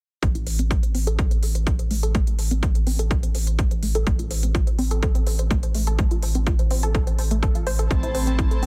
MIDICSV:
0, 0, Header, 1, 6, 480
1, 0, Start_track
1, 0, Key_signature, 0, "minor"
1, 0, Tempo, 480000
1, 227, Time_signature, 4, 2, 24, 8
1, 8660, End_track
2, 0, Start_track
2, 0, Title_t, "Synth arpeggio sound"
2, 0, Program_c, 0, 84
2, 226, Note_on_c, 0, 57, 80
2, 313, Note_off_c, 0, 57, 0
2, 351, Note_on_c, 0, 64, 73
2, 399, Note_off_c, 0, 64, 0
2, 467, Note_on_c, 0, 72, 70
2, 585, Note_off_c, 0, 72, 0
2, 591, Note_on_c, 0, 60, 72
2, 671, Note_off_c, 0, 60, 0
2, 706, Note_on_c, 0, 64, 74
2, 793, Note_off_c, 0, 64, 0
2, 831, Note_on_c, 0, 72, 73
2, 911, Note_off_c, 0, 72, 0
2, 947, Note_on_c, 0, 60, 98
2, 1033, Note_off_c, 0, 60, 0
2, 1072, Note_on_c, 0, 69, 98
2, 1152, Note_off_c, 0, 69, 0
2, 1187, Note_on_c, 0, 69, 79
2, 1273, Note_off_c, 0, 69, 0
2, 1312, Note_on_c, 0, 72, 72
2, 1392, Note_off_c, 0, 72, 0
2, 1427, Note_on_c, 0, 72, 76
2, 1540, Note_off_c, 0, 72, 0
2, 1552, Note_on_c, 0, 72, 74
2, 1600, Note_off_c, 0, 72, 0
2, 1667, Note_on_c, 0, 57, 80
2, 1719, Note_off_c, 0, 57, 0
2, 1792, Note_on_c, 0, 72, 76
2, 1872, Note_off_c, 0, 72, 0
2, 1907, Note_on_c, 0, 57, 75
2, 1993, Note_off_c, 0, 57, 0
2, 2031, Note_on_c, 0, 69, 99
2, 2111, Note_off_c, 0, 69, 0
2, 2146, Note_on_c, 0, 57, 80
2, 2233, Note_off_c, 0, 57, 0
2, 2271, Note_on_c, 0, 64, 73
2, 2319, Note_off_c, 0, 64, 0
2, 2386, Note_on_c, 0, 72, 74
2, 2505, Note_off_c, 0, 72, 0
2, 2511, Note_on_c, 0, 60, 74
2, 2591, Note_off_c, 0, 60, 0
2, 2627, Note_on_c, 0, 64, 76
2, 2713, Note_off_c, 0, 64, 0
2, 2752, Note_on_c, 0, 72, 75
2, 2831, Note_off_c, 0, 72, 0
2, 2867, Note_on_c, 0, 60, 99
2, 2953, Note_off_c, 0, 60, 0
2, 2992, Note_on_c, 0, 69, 92
2, 3071, Note_off_c, 0, 69, 0
2, 3108, Note_on_c, 0, 69, 81
2, 3193, Note_off_c, 0, 69, 0
2, 3232, Note_on_c, 0, 72, 72
2, 3312, Note_off_c, 0, 72, 0
2, 3347, Note_on_c, 0, 72, 72
2, 3460, Note_off_c, 0, 72, 0
2, 3472, Note_on_c, 0, 72, 75
2, 3520, Note_off_c, 0, 72, 0
2, 3588, Note_on_c, 0, 57, 84
2, 3639, Note_off_c, 0, 57, 0
2, 3712, Note_on_c, 0, 72, 77
2, 3792, Note_off_c, 0, 72, 0
2, 3826, Note_on_c, 0, 57, 73
2, 3913, Note_off_c, 0, 57, 0
2, 3951, Note_on_c, 0, 69, 93
2, 4031, Note_off_c, 0, 69, 0
2, 4066, Note_on_c, 0, 57, 82
2, 4153, Note_off_c, 0, 57, 0
2, 4191, Note_on_c, 0, 65, 73
2, 4239, Note_off_c, 0, 65, 0
2, 4307, Note_on_c, 0, 72, 72
2, 4425, Note_off_c, 0, 72, 0
2, 4432, Note_on_c, 0, 60, 74
2, 4511, Note_off_c, 0, 60, 0
2, 4546, Note_on_c, 0, 65, 80
2, 4633, Note_off_c, 0, 65, 0
2, 4671, Note_on_c, 0, 72, 77
2, 4751, Note_off_c, 0, 72, 0
2, 4786, Note_on_c, 0, 60, 99
2, 4873, Note_off_c, 0, 60, 0
2, 4912, Note_on_c, 0, 69, 93
2, 4991, Note_off_c, 0, 69, 0
2, 5028, Note_on_c, 0, 69, 84
2, 5113, Note_off_c, 0, 69, 0
2, 5152, Note_on_c, 0, 72, 73
2, 5232, Note_off_c, 0, 72, 0
2, 5268, Note_on_c, 0, 72, 78
2, 5380, Note_off_c, 0, 72, 0
2, 5392, Note_on_c, 0, 72, 71
2, 5440, Note_off_c, 0, 72, 0
2, 5508, Note_on_c, 0, 57, 80
2, 5559, Note_off_c, 0, 57, 0
2, 5632, Note_on_c, 0, 72, 75
2, 5712, Note_off_c, 0, 72, 0
2, 5748, Note_on_c, 0, 57, 75
2, 5833, Note_off_c, 0, 57, 0
2, 5872, Note_on_c, 0, 69, 92
2, 5952, Note_off_c, 0, 69, 0
2, 5988, Note_on_c, 0, 57, 81
2, 6074, Note_off_c, 0, 57, 0
2, 6112, Note_on_c, 0, 65, 75
2, 6160, Note_off_c, 0, 65, 0
2, 6229, Note_on_c, 0, 72, 74
2, 6346, Note_off_c, 0, 72, 0
2, 6352, Note_on_c, 0, 60, 78
2, 6432, Note_off_c, 0, 60, 0
2, 6468, Note_on_c, 0, 65, 82
2, 6553, Note_off_c, 0, 65, 0
2, 6592, Note_on_c, 0, 72, 76
2, 6672, Note_off_c, 0, 72, 0
2, 6708, Note_on_c, 0, 60, 101
2, 6793, Note_off_c, 0, 60, 0
2, 6832, Note_on_c, 0, 69, 95
2, 6912, Note_off_c, 0, 69, 0
2, 6947, Note_on_c, 0, 69, 85
2, 7033, Note_off_c, 0, 69, 0
2, 7070, Note_on_c, 0, 72, 76
2, 7151, Note_off_c, 0, 72, 0
2, 7187, Note_on_c, 0, 72, 76
2, 7239, Note_off_c, 0, 72, 0
2, 7311, Note_on_c, 0, 57, 70
2, 7391, Note_off_c, 0, 57, 0
2, 7427, Note_on_c, 0, 69, 97
2, 7545, Note_off_c, 0, 69, 0
2, 7551, Note_on_c, 0, 65, 74
2, 7661, Note_off_c, 0, 65, 0
2, 7667, Note_on_c, 0, 72, 102
2, 7785, Note_off_c, 0, 72, 0
2, 7791, Note_on_c, 0, 69, 73
2, 7839, Note_off_c, 0, 69, 0
2, 7907, Note_on_c, 0, 57, 80
2, 7993, Note_off_c, 0, 57, 0
2, 8031, Note_on_c, 0, 64, 75
2, 8079, Note_off_c, 0, 64, 0
2, 8147, Note_on_c, 0, 72, 77
2, 8265, Note_off_c, 0, 72, 0
2, 8272, Note_on_c, 0, 60, 78
2, 8352, Note_off_c, 0, 60, 0
2, 8387, Note_on_c, 0, 64, 78
2, 8473, Note_off_c, 0, 64, 0
2, 8511, Note_on_c, 0, 69, 75
2, 8591, Note_off_c, 0, 69, 0
2, 8626, Note_on_c, 0, 60, 99
2, 8660, Note_off_c, 0, 60, 0
2, 8660, End_track
3, 0, Start_track
3, 0, Title_t, "String section"
3, 0, Program_c, 1, 48
3, 7905, Note_on_c, 1, 64, 74
3, 7905, Note_on_c, 1, 72, 74
3, 7906, Note_on_c, 1, 57, 75
3, 7906, Note_on_c, 1, 81, 89
3, 8660, Note_off_c, 1, 57, 0
3, 8660, Note_off_c, 1, 64, 0
3, 8660, Note_off_c, 1, 72, 0
3, 8660, Note_off_c, 1, 81, 0
3, 8660, End_track
4, 0, Start_track
4, 0, Title_t, "Analog synth lead"
4, 0, Program_c, 2, 81
4, 7906, Note_on_c, 2, 60, 110
4, 8660, Note_off_c, 2, 60, 0
4, 8660, End_track
5, 0, Start_track
5, 0, Title_t, "Analog synth bass"
5, 0, Program_c, 3, 38
5, 226, Note_on_c, 3, 33, 85
5, 4044, Note_off_c, 3, 33, 0
5, 4067, Note_on_c, 3, 33, 88
5, 7884, Note_off_c, 3, 33, 0
5, 7907, Note_on_c, 3, 33, 87
5, 8660, Note_off_c, 3, 33, 0
5, 8660, End_track
6, 0, Start_track
6, 0, Title_t, "Drums"
6, 226, Note_on_c, 9, 36, 115
6, 227, Note_on_c, 9, 42, 53
6, 326, Note_off_c, 9, 36, 0
6, 327, Note_off_c, 9, 42, 0
6, 351, Note_on_c, 9, 42, 54
6, 451, Note_off_c, 9, 42, 0
6, 466, Note_on_c, 9, 46, 101
6, 566, Note_off_c, 9, 46, 0
6, 591, Note_on_c, 9, 42, 53
6, 691, Note_off_c, 9, 42, 0
6, 707, Note_on_c, 9, 36, 105
6, 707, Note_on_c, 9, 42, 53
6, 807, Note_off_c, 9, 36, 0
6, 807, Note_off_c, 9, 42, 0
6, 832, Note_on_c, 9, 42, 52
6, 932, Note_off_c, 9, 42, 0
6, 946, Note_on_c, 9, 46, 83
6, 1046, Note_off_c, 9, 46, 0
6, 1072, Note_on_c, 9, 42, 52
6, 1172, Note_off_c, 9, 42, 0
6, 1186, Note_on_c, 9, 42, 49
6, 1187, Note_on_c, 9, 36, 115
6, 1286, Note_off_c, 9, 42, 0
6, 1287, Note_off_c, 9, 36, 0
6, 1311, Note_on_c, 9, 42, 55
6, 1411, Note_off_c, 9, 42, 0
6, 1426, Note_on_c, 9, 46, 101
6, 1526, Note_off_c, 9, 46, 0
6, 1551, Note_on_c, 9, 42, 50
6, 1651, Note_off_c, 9, 42, 0
6, 1666, Note_on_c, 9, 42, 53
6, 1667, Note_on_c, 9, 36, 107
6, 1767, Note_off_c, 9, 36, 0
6, 1767, Note_off_c, 9, 42, 0
6, 1792, Note_on_c, 9, 42, 54
6, 1892, Note_off_c, 9, 42, 0
6, 1907, Note_on_c, 9, 46, 90
6, 2007, Note_off_c, 9, 46, 0
6, 2031, Note_on_c, 9, 42, 52
6, 2132, Note_off_c, 9, 42, 0
6, 2147, Note_on_c, 9, 36, 118
6, 2147, Note_on_c, 9, 42, 54
6, 2247, Note_off_c, 9, 36, 0
6, 2247, Note_off_c, 9, 42, 0
6, 2271, Note_on_c, 9, 42, 55
6, 2371, Note_off_c, 9, 42, 0
6, 2386, Note_on_c, 9, 46, 103
6, 2486, Note_off_c, 9, 46, 0
6, 2512, Note_on_c, 9, 42, 56
6, 2612, Note_off_c, 9, 42, 0
6, 2627, Note_on_c, 9, 36, 118
6, 2627, Note_on_c, 9, 42, 54
6, 2727, Note_off_c, 9, 36, 0
6, 2727, Note_off_c, 9, 42, 0
6, 2752, Note_on_c, 9, 42, 56
6, 2852, Note_off_c, 9, 42, 0
6, 2867, Note_on_c, 9, 46, 90
6, 2967, Note_off_c, 9, 46, 0
6, 2992, Note_on_c, 9, 42, 54
6, 3092, Note_off_c, 9, 42, 0
6, 3107, Note_on_c, 9, 36, 117
6, 3107, Note_on_c, 9, 42, 50
6, 3207, Note_off_c, 9, 36, 0
6, 3207, Note_off_c, 9, 42, 0
6, 3232, Note_on_c, 9, 42, 59
6, 3332, Note_off_c, 9, 42, 0
6, 3346, Note_on_c, 9, 46, 105
6, 3446, Note_off_c, 9, 46, 0
6, 3471, Note_on_c, 9, 42, 54
6, 3571, Note_off_c, 9, 42, 0
6, 3586, Note_on_c, 9, 42, 55
6, 3587, Note_on_c, 9, 36, 105
6, 3686, Note_off_c, 9, 42, 0
6, 3687, Note_off_c, 9, 36, 0
6, 3711, Note_on_c, 9, 42, 53
6, 3811, Note_off_c, 9, 42, 0
6, 3826, Note_on_c, 9, 46, 95
6, 3926, Note_off_c, 9, 46, 0
6, 3950, Note_on_c, 9, 42, 56
6, 4050, Note_off_c, 9, 42, 0
6, 4066, Note_on_c, 9, 42, 50
6, 4067, Note_on_c, 9, 36, 122
6, 4166, Note_off_c, 9, 42, 0
6, 4167, Note_off_c, 9, 36, 0
6, 4191, Note_on_c, 9, 42, 56
6, 4291, Note_off_c, 9, 42, 0
6, 4306, Note_on_c, 9, 46, 111
6, 4406, Note_off_c, 9, 46, 0
6, 4431, Note_on_c, 9, 42, 53
6, 4531, Note_off_c, 9, 42, 0
6, 4546, Note_on_c, 9, 42, 52
6, 4547, Note_on_c, 9, 36, 113
6, 4646, Note_off_c, 9, 42, 0
6, 4647, Note_off_c, 9, 36, 0
6, 4671, Note_on_c, 9, 42, 52
6, 4771, Note_off_c, 9, 42, 0
6, 4786, Note_on_c, 9, 46, 86
6, 4886, Note_off_c, 9, 46, 0
6, 4910, Note_on_c, 9, 42, 54
6, 5010, Note_off_c, 9, 42, 0
6, 5026, Note_on_c, 9, 36, 122
6, 5026, Note_on_c, 9, 42, 50
6, 5126, Note_off_c, 9, 36, 0
6, 5126, Note_off_c, 9, 42, 0
6, 5150, Note_on_c, 9, 42, 55
6, 5250, Note_off_c, 9, 42, 0
6, 5266, Note_on_c, 9, 46, 106
6, 5366, Note_off_c, 9, 46, 0
6, 5390, Note_on_c, 9, 42, 54
6, 5490, Note_off_c, 9, 42, 0
6, 5506, Note_on_c, 9, 36, 108
6, 5506, Note_on_c, 9, 42, 55
6, 5606, Note_off_c, 9, 36, 0
6, 5606, Note_off_c, 9, 42, 0
6, 5630, Note_on_c, 9, 42, 58
6, 5730, Note_off_c, 9, 42, 0
6, 5745, Note_on_c, 9, 46, 96
6, 5845, Note_off_c, 9, 46, 0
6, 5870, Note_on_c, 9, 42, 55
6, 5970, Note_off_c, 9, 42, 0
6, 5986, Note_on_c, 9, 36, 121
6, 5986, Note_on_c, 9, 42, 51
6, 6086, Note_off_c, 9, 36, 0
6, 6086, Note_off_c, 9, 42, 0
6, 6110, Note_on_c, 9, 42, 52
6, 6210, Note_off_c, 9, 42, 0
6, 6225, Note_on_c, 9, 46, 104
6, 6325, Note_off_c, 9, 46, 0
6, 6350, Note_on_c, 9, 42, 51
6, 6450, Note_off_c, 9, 42, 0
6, 6465, Note_on_c, 9, 42, 49
6, 6466, Note_on_c, 9, 36, 118
6, 6565, Note_off_c, 9, 42, 0
6, 6566, Note_off_c, 9, 36, 0
6, 6590, Note_on_c, 9, 42, 52
6, 6690, Note_off_c, 9, 42, 0
6, 6706, Note_on_c, 9, 46, 90
6, 6806, Note_off_c, 9, 46, 0
6, 6830, Note_on_c, 9, 42, 51
6, 6930, Note_off_c, 9, 42, 0
6, 6946, Note_on_c, 9, 36, 120
6, 6946, Note_on_c, 9, 42, 49
6, 7046, Note_off_c, 9, 36, 0
6, 7046, Note_off_c, 9, 42, 0
6, 7071, Note_on_c, 9, 42, 53
6, 7171, Note_off_c, 9, 42, 0
6, 7185, Note_on_c, 9, 46, 104
6, 7285, Note_off_c, 9, 46, 0
6, 7311, Note_on_c, 9, 42, 52
6, 7411, Note_off_c, 9, 42, 0
6, 7426, Note_on_c, 9, 36, 112
6, 7426, Note_on_c, 9, 42, 52
6, 7526, Note_off_c, 9, 36, 0
6, 7526, Note_off_c, 9, 42, 0
6, 7550, Note_on_c, 9, 42, 55
6, 7650, Note_off_c, 9, 42, 0
6, 7666, Note_on_c, 9, 46, 89
6, 7766, Note_off_c, 9, 46, 0
6, 7791, Note_on_c, 9, 42, 52
6, 7891, Note_off_c, 9, 42, 0
6, 7906, Note_on_c, 9, 36, 117
6, 7907, Note_on_c, 9, 42, 50
6, 8006, Note_off_c, 9, 36, 0
6, 8007, Note_off_c, 9, 42, 0
6, 8032, Note_on_c, 9, 42, 53
6, 8132, Note_off_c, 9, 42, 0
6, 8147, Note_on_c, 9, 46, 103
6, 8247, Note_off_c, 9, 46, 0
6, 8272, Note_on_c, 9, 42, 52
6, 8371, Note_off_c, 9, 42, 0
6, 8386, Note_on_c, 9, 36, 111
6, 8387, Note_on_c, 9, 42, 46
6, 8486, Note_off_c, 9, 36, 0
6, 8487, Note_off_c, 9, 42, 0
6, 8512, Note_on_c, 9, 42, 49
6, 8612, Note_off_c, 9, 42, 0
6, 8626, Note_on_c, 9, 46, 85
6, 8660, Note_off_c, 9, 46, 0
6, 8660, End_track
0, 0, End_of_file